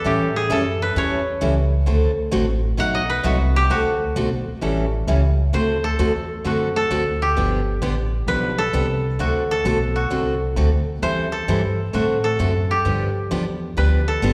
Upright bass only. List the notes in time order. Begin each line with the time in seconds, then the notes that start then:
0.05 A2
0.50 F#2
0.96 E2
1.42 C#2
1.88 D2
2.33 A1
2.78 B1
3.25 C2
3.70 D2
4.16 B1
4.47 muted upright bass stroke
4.62 A1
5.07 C#2
5.53 D2
5.99 E2
6.45 F#2
6.90 D2
7.36 G1
7.82 A1
8.27 B1
8.73 C2
9.19 D2
9.65 B1
10.11 C2
10.56 D2
11.02 E2
11.48 G2
11.94 A2
12.39 F#2
12.85 G2
13.31 E2
13.77 D2
14.22 G1